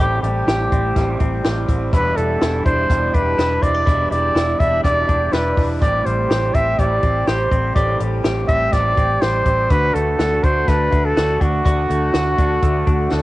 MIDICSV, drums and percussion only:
0, 0, Header, 1, 2, 480
1, 0, Start_track
1, 0, Tempo, 485830
1, 1909, Time_signature, 4, 2, 24, 8
1, 13061, End_track
2, 0, Start_track
2, 0, Title_t, "Drums"
2, 233, Note_on_c, 9, 42, 67
2, 332, Note_off_c, 9, 42, 0
2, 474, Note_on_c, 9, 38, 99
2, 477, Note_on_c, 9, 42, 92
2, 572, Note_off_c, 9, 38, 0
2, 576, Note_off_c, 9, 42, 0
2, 711, Note_on_c, 9, 36, 84
2, 711, Note_on_c, 9, 42, 57
2, 810, Note_off_c, 9, 36, 0
2, 810, Note_off_c, 9, 42, 0
2, 948, Note_on_c, 9, 42, 91
2, 949, Note_on_c, 9, 36, 80
2, 952, Note_on_c, 9, 38, 35
2, 1047, Note_off_c, 9, 42, 0
2, 1048, Note_off_c, 9, 36, 0
2, 1051, Note_off_c, 9, 38, 0
2, 1183, Note_on_c, 9, 42, 52
2, 1190, Note_on_c, 9, 36, 80
2, 1282, Note_off_c, 9, 42, 0
2, 1289, Note_off_c, 9, 36, 0
2, 1425, Note_on_c, 9, 42, 71
2, 1429, Note_on_c, 9, 38, 90
2, 1524, Note_off_c, 9, 42, 0
2, 1528, Note_off_c, 9, 38, 0
2, 1665, Note_on_c, 9, 36, 80
2, 1666, Note_on_c, 9, 42, 68
2, 1764, Note_off_c, 9, 36, 0
2, 1765, Note_off_c, 9, 42, 0
2, 1907, Note_on_c, 9, 36, 107
2, 1908, Note_on_c, 9, 42, 87
2, 2006, Note_off_c, 9, 36, 0
2, 2007, Note_off_c, 9, 42, 0
2, 2149, Note_on_c, 9, 42, 66
2, 2248, Note_off_c, 9, 42, 0
2, 2388, Note_on_c, 9, 38, 104
2, 2392, Note_on_c, 9, 42, 87
2, 2487, Note_off_c, 9, 38, 0
2, 2491, Note_off_c, 9, 42, 0
2, 2627, Note_on_c, 9, 36, 83
2, 2628, Note_on_c, 9, 42, 60
2, 2726, Note_off_c, 9, 36, 0
2, 2727, Note_off_c, 9, 42, 0
2, 2865, Note_on_c, 9, 36, 79
2, 2868, Note_on_c, 9, 42, 91
2, 2964, Note_off_c, 9, 36, 0
2, 2966, Note_off_c, 9, 42, 0
2, 3105, Note_on_c, 9, 42, 50
2, 3107, Note_on_c, 9, 36, 77
2, 3204, Note_off_c, 9, 42, 0
2, 3205, Note_off_c, 9, 36, 0
2, 3346, Note_on_c, 9, 42, 75
2, 3350, Note_on_c, 9, 38, 90
2, 3445, Note_off_c, 9, 42, 0
2, 3449, Note_off_c, 9, 38, 0
2, 3583, Note_on_c, 9, 36, 82
2, 3586, Note_on_c, 9, 42, 67
2, 3682, Note_off_c, 9, 36, 0
2, 3685, Note_off_c, 9, 42, 0
2, 3825, Note_on_c, 9, 36, 109
2, 3828, Note_on_c, 9, 42, 89
2, 3924, Note_off_c, 9, 36, 0
2, 3926, Note_off_c, 9, 42, 0
2, 4070, Note_on_c, 9, 42, 64
2, 4168, Note_off_c, 9, 42, 0
2, 4309, Note_on_c, 9, 38, 97
2, 4313, Note_on_c, 9, 42, 86
2, 4408, Note_off_c, 9, 38, 0
2, 4412, Note_off_c, 9, 42, 0
2, 4547, Note_on_c, 9, 36, 90
2, 4550, Note_on_c, 9, 42, 58
2, 4646, Note_off_c, 9, 36, 0
2, 4649, Note_off_c, 9, 42, 0
2, 4786, Note_on_c, 9, 36, 83
2, 4788, Note_on_c, 9, 42, 93
2, 4885, Note_off_c, 9, 36, 0
2, 4887, Note_off_c, 9, 42, 0
2, 5025, Note_on_c, 9, 42, 48
2, 5028, Note_on_c, 9, 36, 82
2, 5124, Note_off_c, 9, 42, 0
2, 5127, Note_off_c, 9, 36, 0
2, 5264, Note_on_c, 9, 42, 75
2, 5268, Note_on_c, 9, 38, 89
2, 5363, Note_off_c, 9, 42, 0
2, 5367, Note_off_c, 9, 38, 0
2, 5506, Note_on_c, 9, 36, 80
2, 5509, Note_on_c, 9, 46, 71
2, 5604, Note_off_c, 9, 36, 0
2, 5607, Note_off_c, 9, 46, 0
2, 5747, Note_on_c, 9, 36, 107
2, 5750, Note_on_c, 9, 42, 89
2, 5846, Note_off_c, 9, 36, 0
2, 5849, Note_off_c, 9, 42, 0
2, 5989, Note_on_c, 9, 42, 64
2, 6088, Note_off_c, 9, 42, 0
2, 6232, Note_on_c, 9, 38, 107
2, 6236, Note_on_c, 9, 42, 89
2, 6331, Note_off_c, 9, 38, 0
2, 6334, Note_off_c, 9, 42, 0
2, 6468, Note_on_c, 9, 36, 82
2, 6468, Note_on_c, 9, 42, 58
2, 6566, Note_off_c, 9, 42, 0
2, 6567, Note_off_c, 9, 36, 0
2, 6706, Note_on_c, 9, 36, 78
2, 6708, Note_on_c, 9, 42, 87
2, 6805, Note_off_c, 9, 36, 0
2, 6807, Note_off_c, 9, 42, 0
2, 6940, Note_on_c, 9, 42, 47
2, 6946, Note_on_c, 9, 36, 82
2, 7039, Note_off_c, 9, 42, 0
2, 7045, Note_off_c, 9, 36, 0
2, 7184, Note_on_c, 9, 42, 75
2, 7188, Note_on_c, 9, 38, 95
2, 7283, Note_off_c, 9, 42, 0
2, 7286, Note_off_c, 9, 38, 0
2, 7425, Note_on_c, 9, 36, 82
2, 7428, Note_on_c, 9, 42, 66
2, 7523, Note_off_c, 9, 36, 0
2, 7527, Note_off_c, 9, 42, 0
2, 7665, Note_on_c, 9, 36, 109
2, 7668, Note_on_c, 9, 42, 89
2, 7764, Note_off_c, 9, 36, 0
2, 7767, Note_off_c, 9, 42, 0
2, 7907, Note_on_c, 9, 42, 64
2, 8005, Note_off_c, 9, 42, 0
2, 8146, Note_on_c, 9, 38, 104
2, 8149, Note_on_c, 9, 42, 90
2, 8244, Note_off_c, 9, 38, 0
2, 8248, Note_off_c, 9, 42, 0
2, 8384, Note_on_c, 9, 42, 60
2, 8386, Note_on_c, 9, 36, 88
2, 8483, Note_off_c, 9, 42, 0
2, 8485, Note_off_c, 9, 36, 0
2, 8624, Note_on_c, 9, 36, 79
2, 8624, Note_on_c, 9, 42, 90
2, 8628, Note_on_c, 9, 38, 34
2, 8722, Note_off_c, 9, 42, 0
2, 8723, Note_off_c, 9, 36, 0
2, 8727, Note_off_c, 9, 38, 0
2, 8864, Note_on_c, 9, 42, 49
2, 8868, Note_on_c, 9, 36, 79
2, 8963, Note_off_c, 9, 42, 0
2, 8967, Note_off_c, 9, 36, 0
2, 9105, Note_on_c, 9, 42, 73
2, 9109, Note_on_c, 9, 38, 90
2, 9204, Note_off_c, 9, 42, 0
2, 9208, Note_off_c, 9, 38, 0
2, 9343, Note_on_c, 9, 42, 73
2, 9345, Note_on_c, 9, 36, 80
2, 9442, Note_off_c, 9, 42, 0
2, 9444, Note_off_c, 9, 36, 0
2, 9588, Note_on_c, 9, 42, 94
2, 9589, Note_on_c, 9, 36, 108
2, 9687, Note_off_c, 9, 42, 0
2, 9688, Note_off_c, 9, 36, 0
2, 9835, Note_on_c, 9, 42, 68
2, 9934, Note_off_c, 9, 42, 0
2, 10072, Note_on_c, 9, 38, 102
2, 10075, Note_on_c, 9, 42, 94
2, 10171, Note_off_c, 9, 38, 0
2, 10174, Note_off_c, 9, 42, 0
2, 10312, Note_on_c, 9, 42, 58
2, 10313, Note_on_c, 9, 36, 86
2, 10410, Note_off_c, 9, 42, 0
2, 10412, Note_off_c, 9, 36, 0
2, 10550, Note_on_c, 9, 42, 93
2, 10552, Note_on_c, 9, 36, 80
2, 10555, Note_on_c, 9, 38, 35
2, 10649, Note_off_c, 9, 42, 0
2, 10651, Note_off_c, 9, 36, 0
2, 10654, Note_off_c, 9, 38, 0
2, 10791, Note_on_c, 9, 42, 48
2, 10795, Note_on_c, 9, 36, 80
2, 10890, Note_off_c, 9, 42, 0
2, 10894, Note_off_c, 9, 36, 0
2, 11035, Note_on_c, 9, 42, 81
2, 11039, Note_on_c, 9, 38, 94
2, 11134, Note_off_c, 9, 42, 0
2, 11138, Note_off_c, 9, 38, 0
2, 11274, Note_on_c, 9, 36, 79
2, 11279, Note_on_c, 9, 42, 70
2, 11373, Note_off_c, 9, 36, 0
2, 11377, Note_off_c, 9, 42, 0
2, 11516, Note_on_c, 9, 36, 103
2, 11518, Note_on_c, 9, 42, 91
2, 11615, Note_off_c, 9, 36, 0
2, 11617, Note_off_c, 9, 42, 0
2, 11760, Note_on_c, 9, 42, 64
2, 11859, Note_off_c, 9, 42, 0
2, 11994, Note_on_c, 9, 38, 102
2, 11997, Note_on_c, 9, 42, 89
2, 12093, Note_off_c, 9, 38, 0
2, 12096, Note_off_c, 9, 42, 0
2, 12235, Note_on_c, 9, 42, 58
2, 12236, Note_on_c, 9, 36, 86
2, 12334, Note_off_c, 9, 42, 0
2, 12335, Note_off_c, 9, 36, 0
2, 12472, Note_on_c, 9, 42, 95
2, 12475, Note_on_c, 9, 36, 79
2, 12571, Note_off_c, 9, 42, 0
2, 12574, Note_off_c, 9, 36, 0
2, 12714, Note_on_c, 9, 42, 49
2, 12717, Note_on_c, 9, 36, 82
2, 12812, Note_off_c, 9, 42, 0
2, 12816, Note_off_c, 9, 36, 0
2, 12953, Note_on_c, 9, 38, 49
2, 13052, Note_off_c, 9, 38, 0
2, 13061, End_track
0, 0, End_of_file